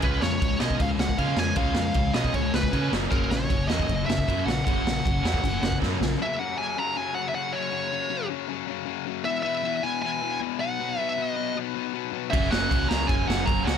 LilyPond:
<<
  \new Staff \with { instrumentName = "Lead electric guitar" } { \time 4/4 \key fis \mixolydian \tempo 4 = 156 b'8 cis''4 dis''8 eis''8 fis''8 eis''8 gis''8 | eis''4. dis''8 cis''8 b'4 r8 | ais'8 cis''4 dis''4 e''4 fis''8 | fis''2. r4 |
e''8 fis''8 gis''8 ais''8 gis''8 fis''16. e''32 fis''8 cis''8~ | cis''4. r2 r8 | e''8 e''4 gis''8 gis''4 r8 fis''8~ | fis''8. e''16 dis''4 r2 |
e''8 fis''4 ais''8 gis''8 fis''8 ais''8 fis''8 | }
  \new Staff \with { instrumentName = "Overdriven electric guitar" } { \clef bass \time 4/4 \key fis \mixolydian <cis eis gis cis'>8 <cis eis gis cis'>8 <cis eis gis cis'>8 <cis eis gis cis'>8 <cis eis gis cis'>8 <cis eis gis cis'>8 <cis eis gis cis'>8 <cis eis gis cis'>8 | <cis eis gis cis'>8 <cis eis gis cis'>8 <cis eis gis cis'>8 <cis eis gis cis'>8 <cis eis gis cis'>8 <cis eis gis cis'>8 <cis eis gis cis'>8 <fis, cis fis ais cis'>8 | <fis, cis fis ais cis'>8 <fis, cis fis ais cis'>8 <fis, cis fis ais cis'>8 <fis, cis fis ais cis'>8 <fis, cis fis ais cis'>8 <fis, cis fis ais cis'>8 <fis, cis fis ais cis'>8 <fis, cis fis ais cis'>8 | <fis, cis fis ais cis'>8 <fis, cis fis ais cis'>8 <fis, cis fis ais cis'>8 <fis, cis fis ais cis'>8 <fis, cis fis ais cis'>8 <fis, cis fis ais cis'>8 <fis, cis fis ais cis'>8 <fis, cis fis ais cis'>8 |
r1 | r1 | r1 | r1 |
<fis, cis fis ais cis'>2.~ <fis, cis fis ais cis'>8 <fis, cis fis ais cis'>8 | }
  \new Staff \with { instrumentName = "Distorted electric guitar" } { \clef bass \time 4/4 \key fis \mixolydian <cis gis cis'>8 <cis gis>8 <cis gis>8 <cis gis cis'>8 <cis gis>8 <cis gis>8 <cis gis cis'>8 <cis gis>8 | <cis gis cis'>8 <cis gis>8 <cis gis>8 <cis gis cis'>8 <cis gis>8 <cis gis>8 <cis gis cis'>8 <fis, cis fis>8 | <fis, cis fis>8 <fis, cis>8 <fis, cis>8 <fis, cis fis>8 <fis, cis>8 <fis, cis>8 <fis, cis fis>8 <fis, cis>8 | <fis, cis fis>8 <fis, cis>8 <fis, cis>8 <fis, cis fis>8 <fis, cis>8 <fis, cis>8 <fis, cis fis>8 <fis, cis>8 |
<fis, cis fis>8 <fis, cis fis>8 <fis, cis fis>8 <fis, cis fis>8 <fis, cis fis>8 <fis, cis fis>8 <fis, cis fis>8 <fis, cis fis>8 | <fis, cis fis>8 <fis, cis fis>8 <fis, cis fis>8 <fis, cis fis>8 <fis, cis fis>8 <fis, cis fis>8 <fis, cis fis>8 <fis, cis fis>8 | <e, b, e>8 <e, b, e>8 <e, b, e>8 <e, b, e>8 <e, b, e>8 <e, b, e>8 <e, b, e>8 <b, fis b>8 | <b, fis b>8 <b, fis b>8 <b, fis b>8 <b, fis b>8 <b, fis b>8 <b, fis b>8 <b, fis b>8 <b, fis b>8 |
<fis, cis fis>8 <fis, cis fis>8 <fis, cis fis>8 <fis, cis fis>8 <fis, cis fis>8 <fis, cis fis>8 <fis, cis fis>8 <fis, cis fis>8 | }
  \new Staff \with { instrumentName = "Overdriven electric guitar" } { \clef bass \time 4/4 \key fis \mixolydian <cis gis cis'>8 <cis gis>8 <cis gis>8 <cis gis cis'>8 <cis gis>8 <cis gis>8 <cis gis cis'>8 <cis gis>8 | <cis gis cis'>8 <cis gis>8 <cis gis>8 <cis gis cis'>8 <cis gis>8 <cis gis>8 <cis gis cis'>8 <fis, cis fis>8 | <fis, cis fis>8 <fis, cis>8 <fis, cis>8 <fis, cis fis>8 <fis, cis>8 <fis, cis>8 <fis, cis fis>8 <fis, cis>8 | <fis, cis fis>8 <fis, cis>8 <fis, cis>8 <fis, cis fis>8 <fis, cis>8 <fis, cis>8 <fis, cis fis>8 <fis, cis>8 |
r1 | r1 | r1 | r1 |
<fis, cis fis>8 <fis, cis fis>8 <fis, cis fis>8 <fis, cis fis>8 <fis, cis fis>8 <fis, cis fis>8 <fis, cis fis>8 <fis, cis fis>8 | }
  \new Staff \with { instrumentName = "Picked electric bass" } { \clef bass \time 4/4 \key fis \mixolydian cis,8 eis,8 cis,8 b,8 cis,8 cis,8 cis8 eis,8 | cis,8 eis,8 cis,8 b,8 cis,8 cis,8 cis8 fis,,8 | fis,,8 ais,,8 fis,,8 e,8 fis,,8 fis,,8 fis,8 ais,,8 | fis,,8 ais,,8 fis,,8 e,8 fis,,8 fis,,8 fis,8 ais,,8 |
r1 | r1 | r1 | r1 |
fis,,8 fis,,8 cis,8 cis,8 fis,,8 fis,,8 fis,,8 cis,8 | }
  \new DrumStaff \with { instrumentName = "Drums" } \drummode { \time 4/4 <cymc bd>8 sn8 <cymc bd>8 sn16 bd16 <cymc bd>8 sn16 bd16 <cymc bd>8 sn8 | <cymc bd>8 sn8 <cymc bd>8 sn16 bd16 <cymc bd>8 sn16 bd16 <cymc bd>8 sn8 | <cymc bd>8 sn8 <cymc bd>8 sn16 bd16 <cymc bd>8 sn16 bd16 <cymc bd>8 sn8 | <cymc bd>8 sn8 <cymc bd>8 sn16 bd16 <cymc bd>8 sn16 bd16 <bd sn>8 sn8 |
r4 r4 r4 r4 | r4 r4 r4 r4 | r4 r4 r4 r4 | r4 r4 r4 r4 |
<cymc bd>8 sn8 <cymc bd>8 sn8 <cymc bd>8 sn8 <cymc bd>8 sn8 | }
>>